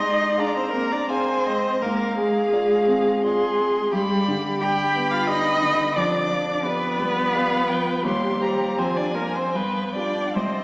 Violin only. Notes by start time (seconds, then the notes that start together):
Already playing: C6
0.39 A#5
1.09 G#5
1.46 D#5
1.83 F5
3.22 C6
3.93 B5
4.62 B5
5.95 D6
6.65 D5
7.33 F5
7.68 G5
8.03 C6
8.42 A#5
8.79 G#5
9.54 G5
10.37 D#5